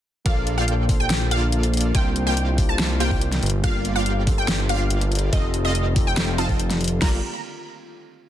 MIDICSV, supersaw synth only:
0, 0, Header, 1, 2, 480
1, 0, Start_track
1, 0, Key_signature, -2, "minor"
1, 0, Tempo, 422535
1, 292, Time_signature, 4, 2, 24, 8
1, 9417, End_track
2, 0, Start_track
2, 0, Title_t, "Supersaw synth"
2, 0, Program_c, 0, 81
2, 291, Note_on_c, 0, 58, 95
2, 291, Note_on_c, 0, 65, 87
2, 291, Note_on_c, 0, 69, 89
2, 291, Note_on_c, 0, 74, 91
2, 291, Note_on_c, 0, 77, 105
2, 626, Note_off_c, 0, 58, 0
2, 626, Note_off_c, 0, 65, 0
2, 626, Note_off_c, 0, 69, 0
2, 626, Note_off_c, 0, 74, 0
2, 626, Note_off_c, 0, 77, 0
2, 655, Note_on_c, 0, 65, 74
2, 656, Note_on_c, 0, 58, 77
2, 656, Note_on_c, 0, 69, 73
2, 656, Note_on_c, 0, 74, 75
2, 656, Note_on_c, 0, 79, 88
2, 1463, Note_off_c, 0, 65, 0
2, 1464, Note_off_c, 0, 58, 0
2, 1464, Note_off_c, 0, 69, 0
2, 1464, Note_off_c, 0, 74, 0
2, 1464, Note_off_c, 0, 79, 0
2, 1491, Note_on_c, 0, 65, 82
2, 1491, Note_on_c, 0, 69, 84
2, 1491, Note_on_c, 0, 74, 82
2, 1491, Note_on_c, 0, 77, 101
2, 1492, Note_on_c, 0, 58, 91
2, 2184, Note_off_c, 0, 58, 0
2, 2184, Note_off_c, 0, 65, 0
2, 2184, Note_off_c, 0, 69, 0
2, 2184, Note_off_c, 0, 74, 0
2, 2184, Note_off_c, 0, 77, 0
2, 2210, Note_on_c, 0, 77, 86
2, 2211, Note_on_c, 0, 58, 77
2, 2211, Note_on_c, 0, 65, 70
2, 2211, Note_on_c, 0, 67, 68
2, 2211, Note_on_c, 0, 72, 70
2, 2373, Note_off_c, 0, 67, 0
2, 2373, Note_off_c, 0, 77, 0
2, 2374, Note_off_c, 0, 58, 0
2, 2374, Note_off_c, 0, 65, 0
2, 2374, Note_off_c, 0, 72, 0
2, 2575, Note_on_c, 0, 58, 94
2, 2575, Note_on_c, 0, 67, 85
2, 2575, Note_on_c, 0, 72, 85
2, 2575, Note_on_c, 0, 77, 104
2, 2576, Note_on_c, 0, 65, 84
2, 3383, Note_off_c, 0, 58, 0
2, 3383, Note_off_c, 0, 67, 0
2, 3383, Note_off_c, 0, 72, 0
2, 3383, Note_off_c, 0, 77, 0
2, 3384, Note_off_c, 0, 65, 0
2, 3411, Note_on_c, 0, 58, 80
2, 3411, Note_on_c, 0, 65, 76
2, 3411, Note_on_c, 0, 67, 76
2, 3411, Note_on_c, 0, 72, 76
2, 3411, Note_on_c, 0, 77, 88
2, 3506, Note_off_c, 0, 58, 0
2, 3506, Note_off_c, 0, 65, 0
2, 3506, Note_off_c, 0, 67, 0
2, 3506, Note_off_c, 0, 72, 0
2, 3506, Note_off_c, 0, 77, 0
2, 3536, Note_on_c, 0, 58, 75
2, 3536, Note_on_c, 0, 65, 70
2, 3536, Note_on_c, 0, 67, 70
2, 3536, Note_on_c, 0, 72, 68
2, 3536, Note_on_c, 0, 79, 85
2, 3632, Note_off_c, 0, 58, 0
2, 3632, Note_off_c, 0, 65, 0
2, 3632, Note_off_c, 0, 67, 0
2, 3632, Note_off_c, 0, 72, 0
2, 3632, Note_off_c, 0, 79, 0
2, 4131, Note_on_c, 0, 58, 96
2, 4131, Note_on_c, 0, 65, 88
2, 4131, Note_on_c, 0, 67, 88
2, 4131, Note_on_c, 0, 74, 85
2, 4131, Note_on_c, 0, 77, 104
2, 4466, Note_off_c, 0, 58, 0
2, 4466, Note_off_c, 0, 65, 0
2, 4466, Note_off_c, 0, 67, 0
2, 4466, Note_off_c, 0, 74, 0
2, 4466, Note_off_c, 0, 77, 0
2, 4496, Note_on_c, 0, 58, 82
2, 4496, Note_on_c, 0, 65, 77
2, 4496, Note_on_c, 0, 67, 74
2, 4496, Note_on_c, 0, 74, 74
2, 4496, Note_on_c, 0, 79, 88
2, 5304, Note_off_c, 0, 58, 0
2, 5304, Note_off_c, 0, 65, 0
2, 5304, Note_off_c, 0, 67, 0
2, 5304, Note_off_c, 0, 74, 0
2, 5304, Note_off_c, 0, 79, 0
2, 5331, Note_on_c, 0, 58, 91
2, 5331, Note_on_c, 0, 67, 83
2, 5331, Note_on_c, 0, 74, 84
2, 5331, Note_on_c, 0, 77, 103
2, 5332, Note_on_c, 0, 65, 84
2, 6024, Note_off_c, 0, 58, 0
2, 6024, Note_off_c, 0, 65, 0
2, 6024, Note_off_c, 0, 67, 0
2, 6024, Note_off_c, 0, 74, 0
2, 6024, Note_off_c, 0, 77, 0
2, 6051, Note_on_c, 0, 60, 78
2, 6051, Note_on_c, 0, 65, 73
2, 6051, Note_on_c, 0, 69, 68
2, 6051, Note_on_c, 0, 75, 73
2, 6051, Note_on_c, 0, 77, 87
2, 6214, Note_off_c, 0, 60, 0
2, 6214, Note_off_c, 0, 65, 0
2, 6214, Note_off_c, 0, 69, 0
2, 6214, Note_off_c, 0, 75, 0
2, 6214, Note_off_c, 0, 77, 0
2, 6415, Note_on_c, 0, 60, 91
2, 6415, Note_on_c, 0, 77, 107
2, 6416, Note_on_c, 0, 65, 86
2, 6416, Note_on_c, 0, 69, 86
2, 6416, Note_on_c, 0, 75, 89
2, 7223, Note_off_c, 0, 60, 0
2, 7223, Note_off_c, 0, 77, 0
2, 7224, Note_off_c, 0, 65, 0
2, 7224, Note_off_c, 0, 69, 0
2, 7224, Note_off_c, 0, 75, 0
2, 7252, Note_on_c, 0, 60, 79
2, 7252, Note_on_c, 0, 65, 77
2, 7252, Note_on_c, 0, 69, 76
2, 7252, Note_on_c, 0, 75, 76
2, 7252, Note_on_c, 0, 77, 89
2, 7346, Note_off_c, 0, 60, 0
2, 7346, Note_off_c, 0, 69, 0
2, 7346, Note_off_c, 0, 75, 0
2, 7346, Note_off_c, 0, 77, 0
2, 7347, Note_off_c, 0, 65, 0
2, 7375, Note_on_c, 0, 69, 70
2, 7376, Note_on_c, 0, 60, 75
2, 7376, Note_on_c, 0, 65, 67
2, 7376, Note_on_c, 0, 75, 70
2, 7376, Note_on_c, 0, 79, 85
2, 7472, Note_off_c, 0, 60, 0
2, 7472, Note_off_c, 0, 65, 0
2, 7472, Note_off_c, 0, 69, 0
2, 7472, Note_off_c, 0, 75, 0
2, 7472, Note_off_c, 0, 79, 0
2, 7971, Note_on_c, 0, 65, 81
2, 7971, Note_on_c, 0, 74, 85
2, 7971, Note_on_c, 0, 77, 97
2, 7972, Note_on_c, 0, 58, 88
2, 7972, Note_on_c, 0, 67, 79
2, 8152, Note_off_c, 0, 58, 0
2, 8152, Note_off_c, 0, 65, 0
2, 8152, Note_off_c, 0, 67, 0
2, 8152, Note_off_c, 0, 74, 0
2, 8152, Note_off_c, 0, 77, 0
2, 9417, End_track
0, 0, End_of_file